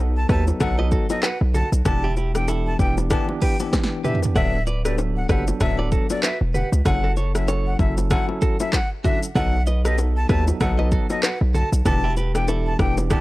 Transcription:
Already playing: B1 F#3 B3 D#4 A4
0.17 A5
0.29 D#2 F#3 B3 D#4 G4 A4 B4 A5, kick, cross-stick, shaker
0.47 low bongo, shaker
0.60 B1 F#3 B3 D#4 A4 F#5, kick, cross-stick, low conga, shaker
0.79 B4 D#5, low bongo
0.92 F#4 A4, kick, shaker
1.09 F#3 B3 D#4 A4 D#5, low bongo, shaker
1.23 F#4 B4 F#5, clap, high bongo, shaker
1.41 B1
1.54 F#4 A4 A5, low conga, shaker
1.72 B1, shaker
1.85 E1 E3 B3 D4 G4 A5, kick, cross-stick, low conga, shaker
2.04 E4 G4
2.17 E4 G4, low bongo, shaker
2.35 E3 B3 D4 G4 G5, cross-stick, shaker
2.48 E4 A4, high bongo, shaker
2.67 A5
2.79 E1 E3 B3 D4 G4 G5, kick, shaker
2.97 high bongo, low bongo, shaker
3.10 E3 B3 D4 G4 A5, kick, cross-stick, low conga, shaker
3.29 low bongo
3.42 G4 B4 G5, kick, open hi-hat, shaker
3.60 E3 B3 D4 G4, low bongo, shaker
3.73 kick, snare, high bongo, shaker
3.84 snare
4.04 E3 B3 D4 G4 B4 E5, mid tom, low conga, shaker
4.15 floor tom
4.22 floor tom, high bongo, shaker
4.35 D1 F#3 B3 D4 A4 D5 E5 F#5, kick, cross-stick, low conga, shaker
4.67 B4 D5, low bongo, shaker
4.85 F#3 B3 D4 G4 A4 B4 D5, cross-stick, shaker
4.98 high bongo, shaker
5.17 F#5
5.29 F#1 F#3 B3 D4 G4 A4 B4 F#5, kick, cross-stick, shaker
5.48 low bongo, shaker
5.60 D1 F#3 B3 D4 A4 E5, kick, cross-stick, low conga, shaker
5.79 B4 D5, low bongo
5.92 F#4 A4, kick, shaker
6.10 F#3 B3 D4 A4 D5, low bongo, shaker
6.23 F#4 B4 E5, clap, high bongo, shaker
6.41 E1
6.54 G4 B4 F#5, low conga, shaker
6.72 C#2, shaker
6.85 F#1 F#3 C#4 E4 A4 F#5, kick, cross-stick, low conga, shaker
7.04 F#4 A4
7.17 A4 C#5, low bongo, shaker
7.35 F#3 C#4 E4 A4 E5, cross-stick, shaker
7.48 A4 C#5, high bongo, shaker
7.67 F#5
7.79 F#1 F#3 C#4 E4 A4 E5, kick, shaker
7.97 low bongo, shaker
8.10 F#3 C#4 E4 A4 F#5, kick, cross-stick, low conga, shaker
8.29 low bongo
8.42 F#4 A4, kick, shaker
8.60 F#3 C#4 E4 A4 E5, low bongo, shaker
8.73 F#5, kick, clap, high bongo, shaker
9.04 F#3 C#4 D4 E4 F#4 A4 E5, kick, low conga, shaker
9.23 shaker
9.35 B1 F#3 B3 D#4 A4 D#5 F#5, kick, cross-stick, low conga, shaker
9.67 B4 D#5, low bongo, shaker
9.85 F#3 B3 D#4 G4 A4 B4 D#5, cross-stick, shaker
9.98 high bongo, shaker
10.17 A5
10.29 D#2 F#3 B3 D#4 G4 A4 B4 A5, kick, cross-stick, shaker
10.48 low bongo, shaker
10.60 B1 F#3 B3 D#4 A4 F#5, kick, cross-stick, low conga, shaker
10.79 B4 D#5, low bongo
10.92 F#4 A4, kick, shaker
11.10 F#3 B3 D#4 A4 D#5, low bongo, shaker
11.23 F#4 B4 F#5, clap, high bongo, shaker
11.41 B1
11.54 F#4 A4 A5, low conga, shaker
11.72 B1, shaker
11.85 E1 E3 B3 D4 G4 A5, kick, cross-stick, low conga, shaker
12.04 E4 G4
12.17 G4 B4, low bongo, shaker
12.35 E3 B3 D4 G4 G5, cross-stick, shaker
12.48 E4 A4, high bongo, shaker
12.67 A5
12.79 E1 E3 B3 D4 G4 G5, kick, cross-stick, shaker
12.97 high bongo, low bongo, shaker
13.10 E3 B3 D4 G4 A5, kick, cross-stick, low conga, shaker

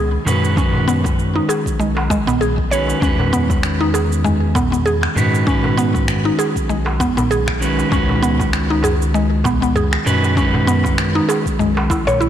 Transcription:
Already playing: C#2 D#3 G#3 C#4 F#4 G#4 B4
0.25 F#2 D#3 G#3 C#4 F#4 B4, darbuka dum, shaker
0.43 darbuka ka, shaker
0.55 D#3 G#3 C#4 F#4 B4, kick, shaker
0.73 darbuka ka, darbuka dum
0.88 B3, shaker
1.04 kick, darbuka tek, shaker
1.19 shaker
1.36 D#4
1.49 G#4, darbuka tek, shaker
1.66 kick, shaker
1.80 B1 G#3, shaker
1.97 darbuka tek
2.10 G#3, kick, darbuka tek, shaker
2.27 B3, darbuka tek, darbuka dum, shaker
2.41 G#4, shaker
2.58 kick
2.70 D#3 G#3 C#4 F#4 B4 C#5, shaker
2.88 darbuka ka, shaker
3.00 E2 D#3 G#3 C#4 F#4, kick, shaker
3.04 B4
3.19 darbuka ka, darbuka dum
3.33 B3, mid tom, shaker
3.50 kick, darbuka tek, shaker
3.63 finger snap, shaker
3.81 D#4
3.94 G#4, darbuka tek, shaker
4.12 shaker
4.24 G#3, mid tom, shaker
4.55 B3, kick, darbuka ka, darbuka tek, darbuka dum, shaker
4.72 B3, shaker
4.86 G#4, shaker
5.03 finger snap
5.15 G#2 D#3 G#3 C#4 F#4 B4, mid tom, darbuka dum, shaker
5.34 darbuka ka, shaker
5.45 D#3 G#3 C#4 F#4, kick, shaker
5.49 B4
5.64 darbuka ka, darbuka dum
5.77 B3, shaker
5.94 kick, darbuka tek, shaker
6.08 finger snap, mid tom, shaker
6.25 D#4
6.39 G#4, darbuka tek, shaker
6.56 kick, shaker
6.69 B1 G#3, shaker
6.86 darbuka tek
7.00 B3, kick, mid tom, darbuka tek, shaker
7.17 B3, darbuka tek, darbuka dum, shaker
7.31 G#4, shaker
7.48 finger snap, kick
7.60 D#3 G#3 C#4 F#4 B4, shaker
7.79 darbuka ka, shaker
7.89 C#2 D#3 G#3 C#4 F#4 B4, kick, mid tom, shaker
8.09 darbuka ka, darbuka dum
8.23 B3, shaker
8.39 kick, darbuka tek, shaker
8.53 finger snap, shaker
8.70 D#4
8.83 G#4, mid tom, darbuka tek, shaker
9.02 shaker
9.14 G#3, shaker
9.44 B3, kick, darbuka ka, darbuka tek, darbuka dum, shaker
9.62 B3, shaker
9.76 G#4, mid tom, shaker
9.93 finger snap
10.05 F#2 D#3 G#3 C#4 F#4 B4, darbuka dum, shaker
10.24 darbuka ka, shaker
10.35 D#3 G#3 C#4 F#4 B4, kick, shaker
10.54 darbuka ka, darbuka dum
10.67 B3, mid tom, shaker
10.84 kick, darbuka tek, shaker
10.98 finger snap, shaker
11.15 D#4
11.29 G#4, darbuka tek, shaker
11.46 kick, shaker
11.59 B1 G#3, mid tom, shaker
11.77 darbuka tek
11.90 E4, kick, darbuka tek, shaker
12.07 C#5, darbuka tek, darbuka dum, shaker
12.21 E4, shaker

